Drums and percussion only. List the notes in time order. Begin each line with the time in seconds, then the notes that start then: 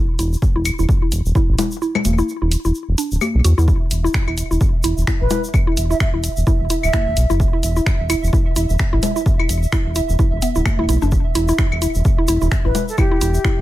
0.19 closed hi-hat, shaker
0.33 shaker
0.42 kick, shaker
0.65 closed hi-hat, claves, shaker
0.79 shaker
0.89 kick, shaker
1.12 closed hi-hat, shaker
1.26 shaker
1.35 kick, shaker
1.58 closed hi-hat, low conga, shaker
1.71 shaker
1.82 shaker
1.95 low conga, claves
2.05 closed hi-hat, high conga, shaker
2.18 shaker
2.29 shaker
2.51 closed hi-hat, shaker
2.65 shaker
2.75 shaker
2.98 closed hi-hat, shaker
3.11 shaker
3.21 high conga, claves, shaker
3.44 closed hi-hat, shaker
3.59 shaker
3.68 kick, shaker
3.91 closed hi-hat, shaker
4.06 shaker
4.14 finger snap, kick, shaker
4.28 claves
4.38 closed hi-hat, shaker
4.51 shaker
4.61 kick, shaker
4.83 closed hi-hat, shaker
4.98 shaker
5.07 finger snap, kick, shaker
5.30 closed hi-hat, low conga, shaker
5.44 shaker
5.54 kick, claves, shaker
5.77 closed hi-hat, shaker
5.91 shaker
6.00 finger snap, kick, shaker
6.24 closed hi-hat, shaker
6.37 shaker
6.47 kick, shaker
6.70 closed hi-hat, shaker
6.83 claves, shaker
6.93 finger snap, kick, high conga, shaker
7.17 closed hi-hat, shaker
7.30 shaker
7.40 kick, shaker
7.63 closed hi-hat, shaker
7.76 shaker
7.86 finger snap, kick, shaker
8.10 closed hi-hat, claves, shaker
8.24 shaker
8.33 kick, shaker
8.56 closed hi-hat, shaker
8.69 shaker
8.79 finger snap, kick, shaker
9.03 closed hi-hat, low conga, shaker
9.16 shaker
9.26 kick, shaker
9.39 claves
9.49 closed hi-hat, shaker
9.63 shaker
9.72 finger snap, kick, shaker
9.95 closed hi-hat, shaker
10.09 shaker
10.19 kick, shaker
10.42 closed hi-hat, shaker
10.55 shaker
10.65 finger snap, kick, high conga, claves, shaker
10.79 high conga
10.89 closed hi-hat, shaker
11.02 shaker
11.12 kick, shaker
11.35 closed hi-hat, shaker
11.48 shaker
11.58 finger snap, kick, shaker
11.72 claves
11.82 closed hi-hat, shaker
11.95 shaker
12.05 kick, shaker
12.28 closed hi-hat, shaker
12.41 shaker
12.52 finger snap, kick, shaker
12.75 closed hi-hat, low conga, shaker
12.88 shaker
12.98 kick, claves, shaker
13.21 closed hi-hat, shaker
13.34 shaker
13.45 finger snap, kick, shaker